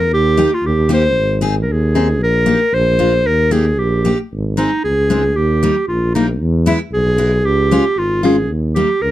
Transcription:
Already playing: tuba F2, clarinet A#4
0.11 tuba D#2, clarinet G4
0.37 steel-string acoustic guitar A#3 D#4 G4
0.54 clarinet F4
0.63 tuba D#2, clarinet G4
0.89 steel-string acoustic guitar A#3 D#4 G4
0.94 clarinet C5
1.17 tuba G#1
1.41 steel-string acoustic guitar C4 D#4 G#4
1.62 clarinet A#4
1.69 tuba D#2, clarinet G#4
1.95 steel-string acoustic guitar C4 D#4 G#4
2.21 tuba A#1, clarinet A#4
2.46 steel-string acoustic guitar A#3 D#4 G4
2.74 tuba A#1, clarinet C5
2.99 steel-string acoustic guitar A#3 D4 F4
3.26 tuba D#2, clarinet A#4
3.51 steel-string acoustic guitar A#3 D#4 G4, clarinet G#4
3.79 tuba A#1, clarinet G4
4.05 steel-string acoustic guitar A#3 D#4 G4
4.32 tuba G#1
4.57 steel-string acoustic guitar G#3 C4 D#4, clarinet D#4
4.84 tuba C#2, clarinet G#4
5.10 steel-string acoustic guitar G#3 C4 D#4
5.36 tuba D#2, clarinet G4
5.63 steel-string acoustic guitar G3 A#3 D#4
5.88 tuba A#1, clarinet F4
6.15 steel-string acoustic guitar G3 A#3 D#4, clarinet D#4
6.41 tuba E2
6.66 steel-string acoustic guitar G#3 B3 E4, clarinet E4
6.92 tuba B1, clarinet G#4
7.18 steel-string acoustic guitar G#3 B3 E4
7.45 tuba C#2, clarinet G4
7.71 steel-string acoustic guitar G#3 C#4 F4
7.96 tuba G#1, clarinet F4
8.23 steel-string acoustic guitar G#3 C#4 F4, clarinet G#4
8.49 tuba D#2
8.75 steel-string acoustic guitar G3 A#3 D#4, clarinet G4
9.02 tuba C#2, clarinet A#4

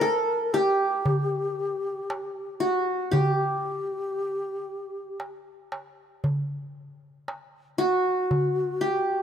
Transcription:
Already playing: ney A#4, qanun C5
0.01 qanun A4, darbuka tek
0.53 ney G4, qanun G4, darbuka tek
1.05 darbuka dum
2.10 darbuka tek
2.60 qanun F#4, darbuka ka
3.11 qanun G4, ney G4, darbuka dum
3.19 ney F#4
3.26 ney G4
3.65 darbuka ka
5.20 darbuka tek
5.72 darbuka tek
6.24 darbuka dum
7.28 darbuka tek
7.78 qanun F#4, ney F#4, darbuka ka
8.31 darbuka dum
8.81 qanun G4, darbuka ka

